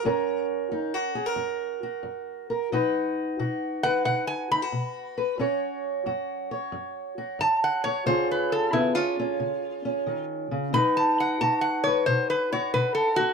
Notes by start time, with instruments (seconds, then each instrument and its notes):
Already playing: resonator guitar played with a steel bar A#5
0.05 steel-string acoustic guitar F#2 C#4 F#4 A#4
0.72 steel-string acoustic guitar F#2 D#4
0.94 steel-string acoustic guitar F#4
1.15 steel-string acoustic guitar G#4
1.26 steel-string acoustic guitar A#4
1.36 steel-string acoustic guitar F#2
1.83 steel-string acoustic guitar F#4
2.03 steel-string acoustic guitar F#2
2.50 steel-string acoustic guitar A#4
2.72 steel-string acoustic guitar B2 D#4 F#4 B4
3.39 steel-string acoustic guitar B2 F#4
3.83 steel-string acoustic guitar B4, resonator guitar played with a steel bar F#5
4.05 steel-string acoustic guitar B2, resonator guitar played with a steel bar F#5
4.27 resonator guitar played with a steel bar G#5
4.51 steel-string acoustic guitar D#4, resonator guitar played with a steel bar B5
4.62 steel-string acoustic guitar F#4
4.72 steel-string acoustic guitar B2
5.18 steel-string acoustic guitar B4
5.38 steel-string acoustic guitar F#2 C#4 F#4 C#5
6.06 steel-string acoustic guitar F#2 F#4
6.51 steel-string acoustic guitar C#5
6.72 steel-string acoustic guitar F#2
7.18 steel-string acoustic guitar F#4
7.39 steel-string acoustic guitar F#2, resonator guitar played with a steel bar A5
7.64 resonator guitar played with a steel bar F#5
7.84 resonator guitar played with a steel bar C#5, steel-string acoustic guitar C#5
8.06 steel-string acoustic guitar C#3 C#4 F4 G#4, resonator guitar played with a steel bar C5
8.31 resonator guitar played with a steel bar B4
8.52 resonator guitar played with a steel bar A4
8.73 steel-string acoustic guitar C#3 B3, resonator guitar played with a steel bar E4
8.95 steel-string acoustic guitar C#4, resonator guitar played with a steel bar F4
9.20 steel-string acoustic guitar C#4
9.40 steel-string acoustic guitar C#3
9.85 steel-string acoustic guitar C#4
10.06 steel-string acoustic guitar D#3
10.51 steel-string acoustic guitar C#3
10.73 steel-string acoustic guitar B2 D#4 F#4 B4, resonator guitar played with a steel bar B5
10.97 resonator guitar played with a steel bar A5
11.20 resonator guitar played with a steel bar F#5
11.41 steel-string acoustic guitar B2 F#4, resonator guitar played with a steel bar A5
11.61 resonator guitar played with a steel bar F#5
11.84 steel-string acoustic guitar B4, resonator guitar played with a steel bar C#5
12.06 steel-string acoustic guitar B2, resonator guitar played with a steel bar C5
12.30 resonator guitar played with a steel bar B4
12.53 steel-string acoustic guitar F#4, resonator guitar played with a steel bar C#5
12.74 steel-string acoustic guitar B2, resonator guitar played with a steel bar B4
12.95 resonator guitar played with a steel bar A4
13.16 resonator guitar played with a steel bar F#4, steel-string acoustic guitar F#4